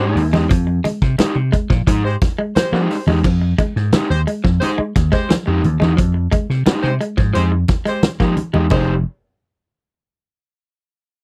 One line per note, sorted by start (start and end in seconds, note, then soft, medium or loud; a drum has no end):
0.00 0.13 G#2 medium
0.00 0.30 G#3 loud
0.00 0.20 G#3 medium
0.00 0.20 D#4 medium
0.00 0.20 G4 medium
0.00 0.31 G4 loud
0.00 0.31 C5 loud
0.15 0.33 D#2 medium
0.15 open hi-hat medium
0.33 0.47 E2 medium
0.33 0.48 G#3 medium
0.33 0.45 G#3 medium
0.33 0.45 D#4 medium
0.33 0.44 G4 medium
0.33 snare soft
0.33 high conga medium
0.49 0.79 F2 loud
0.49 0.64 F3 medium
0.49 kick loud
0.49 closed hi-hat medium
0.49 muted conga medium
0.67 muted clean electric guitar stroke soft
0.84 0.99 G#3 medium
0.84 closed hi-hat medium
0.84 muted conga soft
1.02 1.16 C3 medium
1.02 kick medium
1.02 snare soft
1.18 1.33 G#3 medium
1.18 1.33 D#4 medium
1.18 1.33 G4 medium
1.18 muted clean electric guitar stroke medium
1.18 muted slap bass stroke soft
1.18 snare loud
1.18 closed hi-hat medium
1.18 high conga medium
1.36 1.50 C3 medium
1.52 1.67 G#3 medium
1.52 kick medium
1.52 closed hi-hat medium
1.70 1.84 A#2 medium
1.70 1.84 F3 medium
1.70 kick medium
1.70 snare soft
1.87 2.15 G#2 loud
1.87 2.02 F3 medium
1.87 2.01 G#3 medium
1.87 2.02 D#4 medium
1.87 2.02 G#4 loud
1.87 kick medium
1.87 closed hi-hat loud
2.04 2.15 G#3 medium
2.04 2.16 G4 medium
2.04 2.15 C5 medium
2.04 muted clean electric guitar stroke soft
2.22 kick loud
2.22 snare soft
2.22 closed hi-hat medium
2.22 muted conga medium
2.38 2.53 G#3 medium
2.55 3.04 G#3 medium
2.55 3.04 G4 medium
2.55 3.05 C5 loud
2.55 snare loud
2.55 closed hi-hat loud
2.55 high conga medium
2.72 2.87 F3 loud
2.72 2.94 G#3 medium
2.72 2.87 A#3 medium
2.72 2.94 D#4 medium
2.72 2.94 G4 medium
2.72 snare soft
2.91 muted clean electric guitar stroke soft
2.91 snare soft
2.91 open hi-hat medium
3.07 3.21 E2 medium
3.07 3.22 G#3 medium
3.07 3.19 G#3 medium
3.07 3.19 D#4 medium
3.07 3.19 G4 medium
3.07 high conga medium
3.24 3.53 F2 loud
3.24 3.39 F3 medium
3.24 kick loud
3.24 crash medium
3.24 muted conga medium
3.42 muted clean electric guitar stroke soft
3.58 3.73 G#3 medium
3.58 kick medium
3.58 closed hi-hat medium
3.58 muted conga soft
3.76 3.90 G#2 medium
3.76 snare soft
3.92 4.07 G#3 loud
3.92 4.07 D#4 loud
3.92 4.07 G4 loud
3.92 muted slap bass stroke soft
3.92 muted clean electric guitar stroke soft
3.92 snare loud
3.92 closed hi-hat medium
3.92 high conga medium
4.10 4.24 D#2 medium
4.10 4.21 G#3 medium
4.10 4.21 G4 medium
4.10 4.21 C5 loud
4.27 4.41 G#3 medium
4.27 closed hi-hat medium
4.44 4.58 F2 medium
4.44 4.58 F3 medium
4.44 kick medium
4.44 snare soft
4.60 4.72 G#3 medium
4.60 4.75 G#3 medium
4.60 4.75 D#4 medium
4.60 4.72 G4 medium
4.60 4.76 G#4 loud
4.60 4.71 C5 loud
4.60 closed hi-hat medium
4.60 muted conga soft
4.78 4.92 G#3 medium
4.78 muted slap bass stroke soft
4.95 5.10 D#2 medium
4.95 muted clean electric guitar stroke soft
4.95 kick medium
4.95 snare soft
4.95 closed hi-hat medium
4.95 muted conga medium
5.12 5.26 G#3 loud
5.12 5.34 G#3 medium
5.12 5.34 G4 medium
5.12 5.34 C5 loud
5.12 kick medium
5.12 snare soft
5.29 5.43 F3 medium
5.29 snare loud
5.29 closed hi-hat loud
5.29 high conga medium
5.46 5.61 F2 medium
5.46 5.61 G#3 medium
5.46 5.61 D#4 medium
5.46 5.61 G4 medium
5.46 muted clean electric guitar stroke soft
5.64 5.78 D#2 medium
5.64 closed hi-hat medium
5.64 high conga medium
5.80 5.95 E2 medium
5.80 5.94 G#3 medium
5.80 5.92 G#3 medium
5.80 5.92 D#4 medium
5.80 5.92 G4 medium
5.80 snare soft
5.80 high conga medium
5.97 6.26 F2 loud
5.97 6.12 F3 medium
5.97 kick loud
5.97 closed hi-hat medium
5.97 muted conga medium
6.14 muted clean electric guitar stroke soft
6.32 6.46 G#3 medium
6.32 kick medium
6.32 closed hi-hat medium
6.32 muted conga soft
6.50 6.64 C3 medium
6.50 snare soft
6.66 6.86 G#3 medium
6.66 6.87 D#4 medium
6.66 6.87 G4 medium
6.66 muted clean electric guitar stroke soft
6.66 muted slap bass stroke medium
6.66 snare loud
6.66 closed hi-hat medium
6.66 high conga medium
6.82 6.98 C3 loud
6.82 6.94 G#3 medium
6.82 6.94 G4 medium
6.82 6.94 C5 loud
7.01 7.15 G#3 medium
7.01 closed hi-hat medium
7.17 7.32 G#2 medium
7.17 7.32 F3 medium
7.17 kick medium
7.17 snare soft
7.33 7.63 F2 medium
7.33 7.48 F3 medium
7.33 7.46 G#3 loud
7.33 7.48 G#3 medium
7.33 7.49 D#4 medium
7.33 7.45 G4 medium
7.33 7.49 G#4 medium
7.33 7.45 C5 loud
7.33 closed hi-hat loud
7.33 muted conga soft
7.52 muted clean electric guitar stroke medium
7.68 kick loud
7.68 snare soft
7.68 closed hi-hat medium
7.68 muted conga medium
7.85 8.00 G#3 medium
7.85 8.09 G#3 medium
7.85 8.09 G4 medium
7.85 8.09 C5 loud
7.85 closed hi-hat medium
8.03 snare loud
8.03 closed hi-hat medium
8.03 high conga medium
8.20 8.34 F3 medium
8.20 8.35 G#3 medium
8.20 8.34 A#3 medium
8.20 8.34 D#4 medium
8.20 8.34 G4 medium
8.20 kick medium
8.20 snare soft
8.37 muted clean electric guitar stroke soft
8.37 closed hi-hat medium
8.37 high conga medium
8.54 8.68 E2 medium
8.54 8.68 G#3 medium
8.54 8.65 G#3 medium
8.54 8.65 D#4 medium
8.54 8.64 G4 medium
8.54 high conga medium
8.70 9.03 F1 medium
8.70 8.92 G#3 medium
8.70 8.95 G#3 medium
8.70 8.92 G#3 medium
8.70 8.92 D#4 medium
8.70 8.95 G4 medium
8.70 8.92 G4 medium
8.70 8.95 C5 medium
8.70 kick loud
8.70 crash medium
8.70 muted conga medium